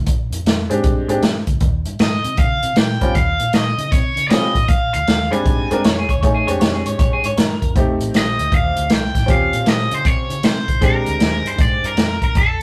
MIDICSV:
0, 0, Header, 1, 6, 480
1, 0, Start_track
1, 0, Tempo, 383877
1, 93, Time_signature, 4, 2, 24, 8
1, 15785, End_track
2, 0, Start_track
2, 0, Title_t, "Overdriven electric guitar"
2, 0, Program_c, 0, 29
2, 2513, Note_on_c, 0, 75, 70
2, 2983, Note_off_c, 0, 75, 0
2, 2988, Note_on_c, 0, 77, 77
2, 3468, Note_off_c, 0, 77, 0
2, 3473, Note_on_c, 0, 79, 83
2, 3916, Note_off_c, 0, 79, 0
2, 3944, Note_on_c, 0, 77, 91
2, 4426, Note_on_c, 0, 75, 78
2, 4439, Note_off_c, 0, 77, 0
2, 4898, Note_off_c, 0, 75, 0
2, 4903, Note_on_c, 0, 73, 84
2, 5334, Note_off_c, 0, 73, 0
2, 5344, Note_on_c, 0, 74, 65
2, 5380, Note_off_c, 0, 74, 0
2, 5385, Note_on_c, 0, 75, 89
2, 5856, Note_on_c, 0, 77, 95
2, 5879, Note_off_c, 0, 75, 0
2, 6162, Note_off_c, 0, 77, 0
2, 6177, Note_on_c, 0, 77, 94
2, 6653, Note_off_c, 0, 77, 0
2, 6658, Note_on_c, 0, 80, 87
2, 7260, Note_off_c, 0, 80, 0
2, 10214, Note_on_c, 0, 75, 78
2, 10687, Note_off_c, 0, 75, 0
2, 10692, Note_on_c, 0, 77, 88
2, 11165, Note_off_c, 0, 77, 0
2, 11177, Note_on_c, 0, 79, 85
2, 11601, Note_off_c, 0, 79, 0
2, 11642, Note_on_c, 0, 77, 102
2, 12111, Note_off_c, 0, 77, 0
2, 12116, Note_on_c, 0, 75, 85
2, 12434, Note_off_c, 0, 75, 0
2, 12434, Note_on_c, 0, 72, 86
2, 12581, Note_off_c, 0, 72, 0
2, 12581, Note_on_c, 0, 73, 90
2, 13065, Note_off_c, 0, 73, 0
2, 13070, Note_on_c, 0, 72, 81
2, 13506, Note_off_c, 0, 72, 0
2, 13559, Note_on_c, 0, 70, 85
2, 14345, Note_on_c, 0, 72, 79
2, 14356, Note_off_c, 0, 70, 0
2, 14492, Note_off_c, 0, 72, 0
2, 14522, Note_on_c, 0, 74, 84
2, 14824, Note_off_c, 0, 74, 0
2, 14825, Note_on_c, 0, 70, 83
2, 15260, Note_off_c, 0, 70, 0
2, 15303, Note_on_c, 0, 70, 78
2, 15467, Note_off_c, 0, 70, 0
2, 15482, Note_on_c, 0, 69, 75
2, 15785, Note_off_c, 0, 69, 0
2, 15785, End_track
3, 0, Start_track
3, 0, Title_t, "Clean electric guitar"
3, 0, Program_c, 1, 27
3, 7315, Note_on_c, 1, 73, 83
3, 7464, Note_off_c, 1, 73, 0
3, 7494, Note_on_c, 1, 68, 75
3, 7629, Note_on_c, 1, 73, 71
3, 7633, Note_off_c, 1, 68, 0
3, 7769, Note_off_c, 1, 73, 0
3, 7784, Note_on_c, 1, 73, 75
3, 7933, Note_on_c, 1, 68, 82
3, 7938, Note_off_c, 1, 73, 0
3, 8091, Note_off_c, 1, 68, 0
3, 8094, Note_on_c, 1, 73, 77
3, 8252, Note_off_c, 1, 73, 0
3, 8270, Note_on_c, 1, 73, 76
3, 8420, Note_off_c, 1, 73, 0
3, 8421, Note_on_c, 1, 68, 64
3, 8575, Note_off_c, 1, 68, 0
3, 8583, Note_on_c, 1, 73, 66
3, 8733, Note_off_c, 1, 73, 0
3, 8748, Note_on_c, 1, 73, 77
3, 8898, Note_off_c, 1, 73, 0
3, 8916, Note_on_c, 1, 68, 73
3, 9062, Note_off_c, 1, 68, 0
3, 9073, Note_on_c, 1, 73, 75
3, 9220, Note_off_c, 1, 73, 0
3, 9220, Note_on_c, 1, 70, 83
3, 9683, Note_off_c, 1, 70, 0
3, 15785, End_track
4, 0, Start_track
4, 0, Title_t, "Upright piano"
4, 0, Program_c, 2, 0
4, 870, Note_on_c, 2, 56, 65
4, 875, Note_on_c, 2, 60, 62
4, 890, Note_on_c, 2, 62, 59
4, 894, Note_on_c, 2, 67, 72
4, 1329, Note_off_c, 2, 56, 0
4, 1331, Note_off_c, 2, 60, 0
4, 1338, Note_off_c, 2, 62, 0
4, 1340, Note_off_c, 2, 67, 0
4, 1355, Note_on_c, 2, 56, 62
4, 1369, Note_on_c, 2, 60, 62
4, 1374, Note_on_c, 2, 62, 57
4, 1380, Note_on_c, 2, 67, 67
4, 1515, Note_off_c, 2, 56, 0
4, 1522, Note_off_c, 2, 60, 0
4, 1524, Note_off_c, 2, 62, 0
4, 1528, Note_off_c, 2, 67, 0
4, 3764, Note_on_c, 2, 55, 65
4, 3773, Note_on_c, 2, 60, 58
4, 3775, Note_on_c, 2, 61, 59
4, 3790, Note_on_c, 2, 65, 74
4, 3922, Note_off_c, 2, 55, 0
4, 3927, Note_off_c, 2, 60, 0
4, 3928, Note_off_c, 2, 61, 0
4, 3935, Note_off_c, 2, 65, 0
4, 5366, Note_on_c, 2, 55, 59
4, 5377, Note_on_c, 2, 60, 57
4, 5384, Note_on_c, 2, 61, 59
4, 5386, Note_on_c, 2, 65, 72
4, 5653, Note_off_c, 2, 55, 0
4, 5659, Note_off_c, 2, 60, 0
4, 5662, Note_off_c, 2, 61, 0
4, 5664, Note_off_c, 2, 65, 0
4, 6632, Note_on_c, 2, 56, 63
4, 6641, Note_on_c, 2, 60, 60
4, 6649, Note_on_c, 2, 62, 60
4, 6659, Note_on_c, 2, 55, 71
4, 7091, Note_off_c, 2, 56, 0
4, 7095, Note_off_c, 2, 60, 0
4, 7099, Note_off_c, 2, 62, 0
4, 7104, Note_off_c, 2, 55, 0
4, 7136, Note_on_c, 2, 56, 72
4, 7146, Note_on_c, 2, 60, 64
4, 7154, Note_on_c, 2, 62, 67
4, 7162, Note_on_c, 2, 70, 77
4, 7287, Note_off_c, 2, 56, 0
4, 7292, Note_off_c, 2, 60, 0
4, 7296, Note_off_c, 2, 62, 0
4, 7300, Note_off_c, 2, 70, 0
4, 7789, Note_on_c, 2, 57, 53
4, 7795, Note_on_c, 2, 61, 47
4, 7804, Note_on_c, 2, 63, 51
4, 7809, Note_on_c, 2, 68, 57
4, 8063, Note_off_c, 2, 57, 0
4, 8066, Note_off_c, 2, 61, 0
4, 8070, Note_off_c, 2, 63, 0
4, 8073, Note_off_c, 2, 68, 0
4, 8092, Note_on_c, 2, 56, 52
4, 8101, Note_on_c, 2, 60, 49
4, 8106, Note_on_c, 2, 62, 48
4, 8109, Note_on_c, 2, 67, 57
4, 9117, Note_off_c, 2, 56, 0
4, 9121, Note_off_c, 2, 60, 0
4, 9123, Note_off_c, 2, 62, 0
4, 9125, Note_off_c, 2, 67, 0
4, 9706, Note_on_c, 2, 57, 59
4, 9708, Note_on_c, 2, 60, 56
4, 9713, Note_on_c, 2, 63, 56
4, 9726, Note_on_c, 2, 67, 67
4, 11035, Note_off_c, 2, 57, 0
4, 11036, Note_off_c, 2, 60, 0
4, 11039, Note_off_c, 2, 63, 0
4, 11045, Note_off_c, 2, 67, 0
4, 11581, Note_on_c, 2, 60, 63
4, 11588, Note_on_c, 2, 61, 58
4, 11600, Note_on_c, 2, 65, 58
4, 11604, Note_on_c, 2, 67, 68
4, 12932, Note_off_c, 2, 60, 0
4, 12935, Note_off_c, 2, 61, 0
4, 12942, Note_off_c, 2, 65, 0
4, 12943, Note_off_c, 2, 67, 0
4, 13517, Note_on_c, 2, 56, 62
4, 13525, Note_on_c, 2, 60, 58
4, 13531, Note_on_c, 2, 62, 51
4, 13539, Note_on_c, 2, 67, 70
4, 14861, Note_off_c, 2, 56, 0
4, 14865, Note_off_c, 2, 60, 0
4, 14868, Note_off_c, 2, 62, 0
4, 14872, Note_off_c, 2, 67, 0
4, 15785, End_track
5, 0, Start_track
5, 0, Title_t, "Fingered electric bass"
5, 0, Program_c, 3, 33
5, 86, Note_on_c, 3, 34, 78
5, 339, Note_off_c, 3, 34, 0
5, 380, Note_on_c, 3, 41, 77
5, 528, Note_off_c, 3, 41, 0
5, 554, Note_on_c, 3, 41, 76
5, 813, Note_off_c, 3, 41, 0
5, 873, Note_on_c, 3, 44, 83
5, 1016, Note_off_c, 3, 44, 0
5, 1049, Note_on_c, 3, 43, 85
5, 1302, Note_off_c, 3, 43, 0
5, 1354, Note_on_c, 3, 44, 78
5, 1497, Note_off_c, 3, 44, 0
5, 1525, Note_on_c, 3, 43, 79
5, 1781, Note_off_c, 3, 43, 0
5, 1841, Note_on_c, 3, 38, 74
5, 1982, Note_off_c, 3, 38, 0
5, 2013, Note_on_c, 3, 39, 84
5, 2266, Note_off_c, 3, 39, 0
5, 2318, Note_on_c, 3, 43, 86
5, 2461, Note_off_c, 3, 43, 0
5, 2492, Note_on_c, 3, 44, 85
5, 2746, Note_off_c, 3, 44, 0
5, 2804, Note_on_c, 3, 48, 87
5, 2945, Note_off_c, 3, 48, 0
5, 2974, Note_on_c, 3, 49, 88
5, 3227, Note_off_c, 3, 49, 0
5, 3290, Note_on_c, 3, 48, 82
5, 3429, Note_off_c, 3, 48, 0
5, 3456, Note_on_c, 3, 46, 89
5, 3709, Note_off_c, 3, 46, 0
5, 3773, Note_on_c, 3, 43, 79
5, 3911, Note_off_c, 3, 43, 0
5, 3939, Note_on_c, 3, 39, 83
5, 4191, Note_off_c, 3, 39, 0
5, 4255, Note_on_c, 3, 46, 85
5, 4392, Note_off_c, 3, 46, 0
5, 4722, Note_on_c, 3, 49, 86
5, 4865, Note_off_c, 3, 49, 0
5, 4897, Note_on_c, 3, 48, 87
5, 5149, Note_off_c, 3, 48, 0
5, 5200, Note_on_c, 3, 49, 82
5, 5343, Note_off_c, 3, 49, 0
5, 5380, Note_on_c, 3, 48, 82
5, 5631, Note_off_c, 3, 48, 0
5, 5691, Note_on_c, 3, 33, 81
5, 5829, Note_off_c, 3, 33, 0
5, 5859, Note_on_c, 3, 34, 74
5, 6110, Note_off_c, 3, 34, 0
5, 6175, Note_on_c, 3, 38, 78
5, 6312, Note_off_c, 3, 38, 0
5, 6342, Note_on_c, 3, 39, 83
5, 6592, Note_off_c, 3, 39, 0
5, 6645, Note_on_c, 3, 43, 82
5, 6785, Note_off_c, 3, 43, 0
5, 6825, Note_on_c, 3, 44, 88
5, 7073, Note_off_c, 3, 44, 0
5, 7138, Note_on_c, 3, 43, 80
5, 7273, Note_off_c, 3, 43, 0
5, 7309, Note_on_c, 3, 41, 82
5, 7555, Note_off_c, 3, 41, 0
5, 7609, Note_on_c, 3, 38, 71
5, 7747, Note_off_c, 3, 38, 0
5, 7783, Note_on_c, 3, 34, 72
5, 8031, Note_off_c, 3, 34, 0
5, 8091, Note_on_c, 3, 41, 86
5, 8228, Note_off_c, 3, 41, 0
5, 8259, Note_on_c, 3, 41, 72
5, 8508, Note_off_c, 3, 41, 0
5, 8576, Note_on_c, 3, 44, 86
5, 8710, Note_off_c, 3, 44, 0
5, 8739, Note_on_c, 3, 43, 83
5, 8988, Note_off_c, 3, 43, 0
5, 9049, Note_on_c, 3, 44, 80
5, 9186, Note_off_c, 3, 44, 0
5, 9218, Note_on_c, 3, 43, 85
5, 9467, Note_off_c, 3, 43, 0
5, 9529, Note_on_c, 3, 41, 74
5, 9665, Note_off_c, 3, 41, 0
5, 9698, Note_on_c, 3, 29, 79
5, 9946, Note_off_c, 3, 29, 0
5, 10002, Note_on_c, 3, 33, 81
5, 10140, Note_off_c, 3, 33, 0
5, 10479, Note_on_c, 3, 38, 79
5, 10618, Note_off_c, 3, 38, 0
5, 10956, Note_on_c, 3, 38, 84
5, 11096, Note_off_c, 3, 38, 0
5, 11134, Note_on_c, 3, 36, 89
5, 11382, Note_off_c, 3, 36, 0
5, 11440, Note_on_c, 3, 33, 76
5, 11578, Note_off_c, 3, 33, 0
5, 11606, Note_on_c, 3, 39, 76
5, 11857, Note_off_c, 3, 39, 0
5, 11914, Note_on_c, 3, 46, 87
5, 12054, Note_off_c, 3, 46, 0
5, 12087, Note_on_c, 3, 46, 82
5, 12338, Note_off_c, 3, 46, 0
5, 12399, Note_on_c, 3, 49, 87
5, 12537, Note_off_c, 3, 49, 0
5, 12564, Note_on_c, 3, 48, 89
5, 12816, Note_off_c, 3, 48, 0
5, 12875, Note_on_c, 3, 49, 87
5, 13014, Note_off_c, 3, 49, 0
5, 13041, Note_on_c, 3, 48, 86
5, 13294, Note_off_c, 3, 48, 0
5, 13352, Note_on_c, 3, 36, 76
5, 13492, Note_off_c, 3, 36, 0
5, 13530, Note_on_c, 3, 34, 81
5, 13779, Note_off_c, 3, 34, 0
5, 13828, Note_on_c, 3, 38, 83
5, 13970, Note_off_c, 3, 38, 0
5, 14001, Note_on_c, 3, 39, 83
5, 14254, Note_off_c, 3, 39, 0
5, 14300, Note_on_c, 3, 43, 83
5, 14445, Note_off_c, 3, 43, 0
5, 14482, Note_on_c, 3, 44, 88
5, 14735, Note_off_c, 3, 44, 0
5, 14786, Note_on_c, 3, 43, 82
5, 14929, Note_off_c, 3, 43, 0
5, 14954, Note_on_c, 3, 41, 82
5, 15210, Note_off_c, 3, 41, 0
5, 15273, Note_on_c, 3, 31, 77
5, 15413, Note_off_c, 3, 31, 0
5, 15446, Note_on_c, 3, 29, 81
5, 15697, Note_off_c, 3, 29, 0
5, 15785, End_track
6, 0, Start_track
6, 0, Title_t, "Drums"
6, 78, Note_on_c, 9, 42, 76
6, 87, Note_on_c, 9, 36, 99
6, 203, Note_off_c, 9, 42, 0
6, 212, Note_off_c, 9, 36, 0
6, 404, Note_on_c, 9, 42, 62
6, 529, Note_off_c, 9, 42, 0
6, 577, Note_on_c, 9, 42, 76
6, 589, Note_on_c, 9, 38, 100
6, 702, Note_off_c, 9, 42, 0
6, 714, Note_off_c, 9, 38, 0
6, 880, Note_on_c, 9, 42, 53
6, 1005, Note_off_c, 9, 42, 0
6, 1044, Note_on_c, 9, 42, 72
6, 1051, Note_on_c, 9, 36, 101
6, 1169, Note_off_c, 9, 42, 0
6, 1176, Note_off_c, 9, 36, 0
6, 1362, Note_on_c, 9, 42, 50
6, 1487, Note_off_c, 9, 42, 0
6, 1530, Note_on_c, 9, 42, 80
6, 1541, Note_on_c, 9, 38, 112
6, 1655, Note_off_c, 9, 42, 0
6, 1666, Note_off_c, 9, 38, 0
6, 1836, Note_on_c, 9, 42, 51
6, 1842, Note_on_c, 9, 36, 73
6, 1961, Note_off_c, 9, 42, 0
6, 1967, Note_off_c, 9, 36, 0
6, 2004, Note_on_c, 9, 42, 68
6, 2013, Note_on_c, 9, 36, 98
6, 2129, Note_off_c, 9, 42, 0
6, 2138, Note_off_c, 9, 36, 0
6, 2317, Note_on_c, 9, 42, 55
6, 2442, Note_off_c, 9, 42, 0
6, 2490, Note_on_c, 9, 42, 69
6, 2501, Note_on_c, 9, 38, 104
6, 2615, Note_off_c, 9, 42, 0
6, 2626, Note_off_c, 9, 38, 0
6, 2803, Note_on_c, 9, 42, 53
6, 2928, Note_off_c, 9, 42, 0
6, 2966, Note_on_c, 9, 42, 77
6, 2975, Note_on_c, 9, 36, 105
6, 3091, Note_off_c, 9, 42, 0
6, 3100, Note_off_c, 9, 36, 0
6, 3282, Note_on_c, 9, 42, 60
6, 3407, Note_off_c, 9, 42, 0
6, 3448, Note_on_c, 9, 42, 81
6, 3459, Note_on_c, 9, 38, 111
6, 3573, Note_off_c, 9, 42, 0
6, 3584, Note_off_c, 9, 38, 0
6, 3765, Note_on_c, 9, 42, 56
6, 3769, Note_on_c, 9, 36, 74
6, 3890, Note_off_c, 9, 42, 0
6, 3894, Note_off_c, 9, 36, 0
6, 3937, Note_on_c, 9, 42, 84
6, 3940, Note_on_c, 9, 36, 96
6, 4062, Note_off_c, 9, 42, 0
6, 4065, Note_off_c, 9, 36, 0
6, 4245, Note_on_c, 9, 42, 57
6, 4370, Note_off_c, 9, 42, 0
6, 4412, Note_on_c, 9, 42, 74
6, 4423, Note_on_c, 9, 38, 96
6, 4537, Note_off_c, 9, 42, 0
6, 4548, Note_off_c, 9, 38, 0
6, 4731, Note_on_c, 9, 42, 53
6, 4856, Note_off_c, 9, 42, 0
6, 4900, Note_on_c, 9, 42, 77
6, 4901, Note_on_c, 9, 36, 95
6, 5025, Note_off_c, 9, 42, 0
6, 5026, Note_off_c, 9, 36, 0
6, 5211, Note_on_c, 9, 42, 54
6, 5336, Note_off_c, 9, 42, 0
6, 5379, Note_on_c, 9, 42, 82
6, 5391, Note_on_c, 9, 38, 109
6, 5504, Note_off_c, 9, 42, 0
6, 5516, Note_off_c, 9, 38, 0
6, 5690, Note_on_c, 9, 36, 70
6, 5694, Note_on_c, 9, 42, 56
6, 5815, Note_off_c, 9, 36, 0
6, 5819, Note_off_c, 9, 42, 0
6, 5854, Note_on_c, 9, 42, 75
6, 5860, Note_on_c, 9, 36, 102
6, 5979, Note_off_c, 9, 42, 0
6, 5985, Note_off_c, 9, 36, 0
6, 6171, Note_on_c, 9, 42, 55
6, 6296, Note_off_c, 9, 42, 0
6, 6344, Note_on_c, 9, 42, 75
6, 6355, Note_on_c, 9, 38, 94
6, 6469, Note_off_c, 9, 42, 0
6, 6480, Note_off_c, 9, 38, 0
6, 6659, Note_on_c, 9, 42, 54
6, 6784, Note_off_c, 9, 42, 0
6, 6821, Note_on_c, 9, 42, 69
6, 6822, Note_on_c, 9, 36, 100
6, 6946, Note_off_c, 9, 42, 0
6, 6947, Note_off_c, 9, 36, 0
6, 7137, Note_on_c, 9, 42, 53
6, 7262, Note_off_c, 9, 42, 0
6, 7305, Note_on_c, 9, 42, 87
6, 7316, Note_on_c, 9, 38, 110
6, 7430, Note_off_c, 9, 42, 0
6, 7441, Note_off_c, 9, 38, 0
6, 7614, Note_on_c, 9, 36, 70
6, 7617, Note_on_c, 9, 42, 56
6, 7739, Note_off_c, 9, 36, 0
6, 7742, Note_off_c, 9, 42, 0
6, 7786, Note_on_c, 9, 36, 96
6, 7790, Note_on_c, 9, 42, 74
6, 7912, Note_off_c, 9, 36, 0
6, 7916, Note_off_c, 9, 42, 0
6, 8100, Note_on_c, 9, 42, 57
6, 8225, Note_off_c, 9, 42, 0
6, 8262, Note_on_c, 9, 42, 83
6, 8273, Note_on_c, 9, 38, 104
6, 8387, Note_off_c, 9, 42, 0
6, 8398, Note_off_c, 9, 38, 0
6, 8572, Note_on_c, 9, 42, 55
6, 8698, Note_off_c, 9, 42, 0
6, 8739, Note_on_c, 9, 42, 76
6, 8742, Note_on_c, 9, 36, 99
6, 8864, Note_off_c, 9, 42, 0
6, 8867, Note_off_c, 9, 36, 0
6, 9049, Note_on_c, 9, 42, 56
6, 9174, Note_off_c, 9, 42, 0
6, 9220, Note_on_c, 9, 42, 91
6, 9231, Note_on_c, 9, 38, 104
6, 9345, Note_off_c, 9, 42, 0
6, 9356, Note_off_c, 9, 38, 0
6, 9528, Note_on_c, 9, 42, 55
6, 9529, Note_on_c, 9, 36, 69
6, 9653, Note_off_c, 9, 42, 0
6, 9654, Note_off_c, 9, 36, 0
6, 9698, Note_on_c, 9, 42, 73
6, 9699, Note_on_c, 9, 36, 101
6, 9823, Note_off_c, 9, 42, 0
6, 9824, Note_off_c, 9, 36, 0
6, 10009, Note_on_c, 9, 42, 55
6, 10134, Note_off_c, 9, 42, 0
6, 10179, Note_on_c, 9, 42, 71
6, 10191, Note_on_c, 9, 38, 100
6, 10304, Note_off_c, 9, 42, 0
6, 10316, Note_off_c, 9, 38, 0
6, 10492, Note_on_c, 9, 42, 52
6, 10617, Note_off_c, 9, 42, 0
6, 10653, Note_on_c, 9, 36, 94
6, 10655, Note_on_c, 9, 42, 70
6, 10778, Note_off_c, 9, 36, 0
6, 10780, Note_off_c, 9, 42, 0
6, 10958, Note_on_c, 9, 42, 54
6, 11083, Note_off_c, 9, 42, 0
6, 11123, Note_on_c, 9, 42, 77
6, 11134, Note_on_c, 9, 38, 112
6, 11248, Note_off_c, 9, 42, 0
6, 11259, Note_off_c, 9, 38, 0
6, 11438, Note_on_c, 9, 36, 71
6, 11441, Note_on_c, 9, 42, 54
6, 11452, Note_on_c, 9, 38, 28
6, 11563, Note_off_c, 9, 36, 0
6, 11566, Note_off_c, 9, 42, 0
6, 11577, Note_off_c, 9, 38, 0
6, 11604, Note_on_c, 9, 42, 80
6, 11608, Note_on_c, 9, 36, 102
6, 11729, Note_off_c, 9, 42, 0
6, 11733, Note_off_c, 9, 36, 0
6, 11915, Note_on_c, 9, 42, 64
6, 12040, Note_off_c, 9, 42, 0
6, 12079, Note_on_c, 9, 42, 77
6, 12090, Note_on_c, 9, 38, 102
6, 12204, Note_off_c, 9, 42, 0
6, 12216, Note_off_c, 9, 38, 0
6, 12394, Note_on_c, 9, 42, 57
6, 12519, Note_off_c, 9, 42, 0
6, 12564, Note_on_c, 9, 42, 77
6, 12567, Note_on_c, 9, 36, 93
6, 12689, Note_off_c, 9, 42, 0
6, 12692, Note_off_c, 9, 36, 0
6, 12879, Note_on_c, 9, 42, 54
6, 13004, Note_off_c, 9, 42, 0
6, 13042, Note_on_c, 9, 42, 87
6, 13054, Note_on_c, 9, 38, 114
6, 13167, Note_off_c, 9, 42, 0
6, 13179, Note_off_c, 9, 38, 0
6, 13356, Note_on_c, 9, 36, 66
6, 13356, Note_on_c, 9, 42, 57
6, 13481, Note_off_c, 9, 36, 0
6, 13481, Note_off_c, 9, 42, 0
6, 13523, Note_on_c, 9, 42, 76
6, 13526, Note_on_c, 9, 36, 108
6, 13648, Note_off_c, 9, 42, 0
6, 13651, Note_off_c, 9, 36, 0
6, 13831, Note_on_c, 9, 42, 58
6, 13956, Note_off_c, 9, 42, 0
6, 14005, Note_on_c, 9, 42, 79
6, 14016, Note_on_c, 9, 38, 106
6, 14130, Note_off_c, 9, 42, 0
6, 14141, Note_off_c, 9, 38, 0
6, 14325, Note_on_c, 9, 42, 56
6, 14450, Note_off_c, 9, 42, 0
6, 14484, Note_on_c, 9, 42, 72
6, 14486, Note_on_c, 9, 36, 108
6, 14609, Note_off_c, 9, 42, 0
6, 14611, Note_off_c, 9, 36, 0
6, 14804, Note_on_c, 9, 42, 54
6, 14929, Note_off_c, 9, 42, 0
6, 14966, Note_on_c, 9, 42, 80
6, 14977, Note_on_c, 9, 38, 113
6, 15091, Note_off_c, 9, 42, 0
6, 15102, Note_off_c, 9, 38, 0
6, 15276, Note_on_c, 9, 42, 50
6, 15277, Note_on_c, 9, 36, 72
6, 15401, Note_off_c, 9, 42, 0
6, 15402, Note_off_c, 9, 36, 0
6, 15442, Note_on_c, 9, 42, 71
6, 15448, Note_on_c, 9, 36, 102
6, 15567, Note_off_c, 9, 42, 0
6, 15573, Note_off_c, 9, 36, 0
6, 15785, End_track
0, 0, End_of_file